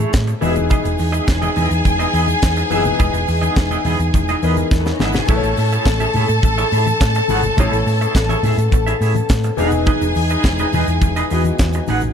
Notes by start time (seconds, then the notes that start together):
Already playing: C#3 A3 E4 G#4 C#5
0.00 A3 E4 G#4 C#5, high conga
0.13 A2, muted clean electric guitar stroke, kick, snare, clap, closed hi-hat, muted conga, shaker
0.27 muted clean electric guitar stroke, closed hi-hat, shaker
0.41 E1 E3 G#3 B3 D#4 E4 F#4 G#4 E5 G#5, open hi-hat, high conga, shaker
0.50 G#4
0.55 muted clean electric guitar stroke, closed hi-hat, low conga, shaker
0.70 B3 E4 G#4 D#5, kick, closed hi-hat, muted conga, low conga, shaker
0.84 E1, muted clean electric guitar stroke, closed hi-hat, shaker
0.98 E2, muted clean electric guitar stroke, open hi-hat, muted conga, shaker
1.12 B3 E4 G#4 D#5, closed hi-hat, shaker
1.27 E1, muted clean electric guitar stroke, kick, snare, clap, closed hi-hat, shaker
1.42 B3 E4 G#4 D#5, closed hi-hat, high conga, shaker
1.56 E2 B3 E4 G#4 D#5, open hi-hat, low conga, shaker
1.70 E2, muted clean electric guitar stroke, closed hi-hat, shaker
1.85 E1, muted clean electric guitar stroke, kick, closed hi-hat, high conga, shaker
1.99 B3 E4 G#4 D#5, closed hi-hat, shaker
2.13 E2 B3 E4 G#4 D#5, open hi-hat, muted conga, shaker
2.28 muted clean electric guitar stroke, closed hi-hat, high conga, shaker
2.42 E2, kick, snare, clap, closed hi-hat, muted conga, shaker
2.56 muted clean electric guitar stroke, closed hi-hat, shaker
2.70 F#1 E3 B3 D#4 E4 G#4 E5, open hi-hat, high conga, shaker
2.85 muted clean electric guitar stroke, closed hi-hat, low conga, shaker
2.99 E1 B3 E4 G#4 D#5, kick, closed hi-hat, low conga, shaker
3.13 E1, muted clean electric guitar stroke, closed hi-hat, shaker
3.28 E2, muted clean electric guitar stroke, open hi-hat, shaker
3.42 B3 E4 G#4 D#5, closed hi-hat, high conga, shaker
3.56 E1, muted clean electric guitar stroke, kick, snare, clap, closed hi-hat, muted conga, shaker
3.71 B3 E4 G#4 D#5, closed hi-hat, high conga, shaker
3.85 E2 B3 E4 G#4 D#5, open hi-hat, low conga, shaker
3.99 E2, muted clean electric guitar stroke, closed hi-hat, shaker
4.14 E1, muted clean electric guitar stroke, kick, closed hi-hat, muted conga, high conga, shaker
4.28 B3 E4 G#4 D#5, closed hi-hat, shaker
4.43 E2 E3 B3 D#4 E4 G#4 A#4 D#5, open hi-hat, muted conga, shaker
4.50 B4
4.57 closed hi-hat, high conga, shaker
4.71 E2, muted clean electric guitar stroke, kick, snare, shaker
4.78 A3 A4
4.85 B3 B4, muted clean electric guitar stroke, snare, shaker
4.92 C#4 C#5
4.98 G#1 B3 D#4 E4 G#4 D#5, snare, high conga, shaker
5.02 E5
5.06 E4 E5
5.12 F#4 F#5, muted clean electric guitar stroke, snare, low conga, shaker
5.20 G#4 G#5
5.27 A1 C#3 A3 E4 G#4 A4 B4 C#5 E5 A5, kick, crash, low conga, shaker
5.37 C#5
5.43 A1, muted clean electric guitar stroke, closed hi-hat, shaker
5.57 A2, muted clean electric guitar stroke, open hi-hat, shaker
5.72 E4 G#4 C#5 E5, closed hi-hat, shaker
5.86 A1, muted clean electric guitar stroke, kick, snare, clap, closed hi-hat, muted conga, shaker
6.00 E4 G#4 C#5 E5, closed hi-hat, high conga, shaker
6.13 A2 E4 G#4 C#5 E5, open hi-hat, low conga, shaker
6.29 A2, muted clean electric guitar stroke, closed hi-hat, shaker
6.43 A1, muted clean electric guitar stroke, kick, closed hi-hat, muted conga, high conga, shaker
6.58 E4 G#4 C#5 E5, closed hi-hat, shaker
6.72 A2 E4 G#4 C#5 E5, open hi-hat, muted conga, shaker
6.86 muted clean electric guitar stroke, closed hi-hat, high conga, shaker
7.00 A2, muted clean electric guitar stroke, kick, snare, clap, closed hi-hat, shaker
7.15 muted clean electric guitar stroke, closed hi-hat, shaker
7.28 G#1 E4 G#4 C#5 F#5, open hi-hat, muted conga, high conga, shaker
7.43 muted clean electric guitar stroke, closed hi-hat, low conga, shaker
7.57 A1 A3 B3 E4 G#4 A4 C#5 E5, kick, closed hi-hat, muted conga, low conga, shaker
7.72 A1, muted clean electric guitar stroke, closed hi-hat, shaker
7.86 A2, muted clean electric guitar stroke, open hi-hat, muted conga, shaker
8.01 E4 G#4 C#5 E5, closed hi-hat, shaker
8.15 A1, muted clean electric guitar stroke, kick, snare, clap, closed hi-hat, muted conga, shaker
8.29 E4 G#4 C#5 E5, closed hi-hat, high conga, shaker
8.43 A2 E4 G#4 C#5 E5, open hi-hat, low conga, shaker
8.58 A2, muted clean electric guitar stroke, closed hi-hat, shaker
8.71 A1, muted clean electric guitar stroke, kick, closed hi-hat, high conga, shaker
8.86 E4 G#4 C#5 E5, closed hi-hat, shaker
9.01 A2 E4 G#4 C#5 E5, open hi-hat, shaker
9.15 muted clean electric guitar stroke, closed hi-hat, high conga, shaker
9.29 A2, muted clean electric guitar stroke, kick, snare, clap, closed hi-hat, shaker
9.44 muted clean electric guitar stroke, closed hi-hat, shaker
9.57 E1 E3 G#3 B3 D#4 G#4 B4 F#5 G#5, open hi-hat, muted conga, high conga, shaker
9.71 muted clean electric guitar stroke, closed hi-hat, low conga, shaker
9.86 D#4 G#4 B4 D#5, kick, closed hi-hat, muted conga, low conga, shaker
10.01 E1, muted clean electric guitar stroke, closed hi-hat, shaker
10.15 E2, muted clean electric guitar stroke, open hi-hat, muted conga, shaker
10.29 D#4 G#4 B4 D#5, closed hi-hat, shaker
10.43 E1, muted clean electric guitar stroke, kick, snare, clap, closed hi-hat, muted conga, shaker
10.58 D#4 G#4 B4 D#5, closed hi-hat, high conga, shaker
10.73 E2 D#4 G#4 B4 D#5, open hi-hat, muted conga, low conga, shaker
10.87 E2, muted clean electric guitar stroke, closed hi-hat, shaker
11.01 E1, muted clean electric guitar stroke, kick, closed hi-hat, high conga, shaker
11.16 D#4 G#4 B4 D#5, closed hi-hat, shaker
11.30 E2 E3 B3 D#4 F#4 G#4 B4 D#5, open hi-hat, muted conga, shaker
11.44 muted clean electric guitar stroke, closed hi-hat, high conga, shaker
11.58 E2, muted clean electric guitar stroke, kick, snare, clap, closed hi-hat, shaker
11.73 muted clean electric guitar stroke, closed hi-hat, shaker
11.87 A1 D#4 G#4 B4 F#5, open hi-hat, high conga, shaker
12.00 closed hi-hat, low conga, shaker